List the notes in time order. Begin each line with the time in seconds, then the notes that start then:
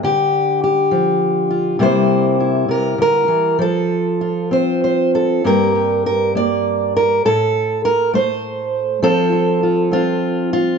Already playing: D4
0.03 D3 G4
0.64 G4
0.91 F3
1.50 F4
1.79 C3 G3 A#3 E4 C5
2.40 E4
2.68 C3 A#4
2.98 D3 A#4
3.28 E3
3.59 F3 A4
4.21 F4
4.51 C4 C5
4.84 C5
5.15 A4
5.44 G2 A#3 D4 G4 A#4
5.75 G4
6.06 A#4
6.35 A#3 D5
6.97 A#4
7.25 A2 A4
7.85 A#4
8.14 A3 C5
9.02 F3 C4 F4 A4
9.33 F4
9.63 F4
9.91 C4 F4
10.53 F4